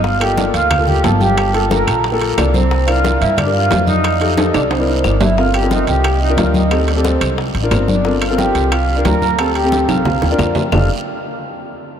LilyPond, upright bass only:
\new Staff \with { instrumentName = "Upright bass" } { \clef bass \time 4/4 \key f \mixolydian \tempo 4 = 180 g,,4. d,4. g,,4~ | g,,4. bes,,4. c,4~ | c,4. g,4. f,4~ | f,4. c,4. g,,4~ |
g,,4. c,4. d,4~ | d,4. c,4 a,,8 g,,4~ | g,,4. c,4. d,4~ | d,4. c,4 ees,8 f,4 |
f,,8 r2. r8 | }